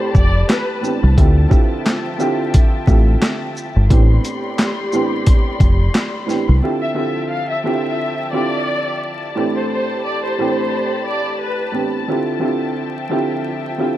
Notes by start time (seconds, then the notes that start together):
Already playing: A2 E3 A3 C4 D4 G4 C5 D5 A5 B5
0.15 F1 D5, kick, shaker
0.49 B4, snare, clap, closed hi-hat
0.81 A2 E3 B3 C4 D4 G4, shaker
1.03 C2
1.16 D2 D3 F3 C4 E4 F4 G4 E5 G5, kick, closed hi-hat
1.48 D3 C4 E4 F4 G4, kick, shaker
1.86 snare, clap, closed hi-hat
2.18 D3 C4 E4 F4 G4, shaker
2.54 kick, closed hi-hat
2.87 A1 D3 C4 E4 F4 G4, kick, shaker
3.22 snare, clap, closed hi-hat
3.57 shaker
3.76 G1
3.89 A1 A2 E3 B3 C4 D4 G4 D5 B5 C6, kick, closed hi-hat
4.25 closed hi-hat, shaker
4.59 snare, clap, closed hi-hat
4.93 A2 E3 B3 C4 D4 G4, shaker
5.27 kick, closed hi-hat
5.60 F1, kick, closed hi-hat, shaker
5.95 snare, clap, closed hi-hat
6.26 A2 E3 B3 C4 D4 G4, snare, shaker
6.49 C2
6.62 D3 F3 C4 E4 F4 G4 E5 G5 A5
6.82 E5
6.94 D3 C4 E4 F4 G4 E5
7.31 F5
7.50 E5
7.64 D3 C4 E4 F4 G4 E5
8.32 D3 C4 E4 F4 G4 D5
9.35 A2 E3 A3 C4 D4 G4 D5 B5
9.55 C5
9.70 C5
10.05 D5
10.24 C5
10.38 A2 E3 A3 C4 D4 G4 C5
11.07 D5
11.40 B4
11.72 A2 E3 B3 C4 D4 G4
12.07 D3 F3 C4 E4 F4 G4 E5 G5
12.40 D3 C4 E4 F4 G4
13.09 D3 C4 E4 F4 G4
13.78 D3 C4 E4 F4 G4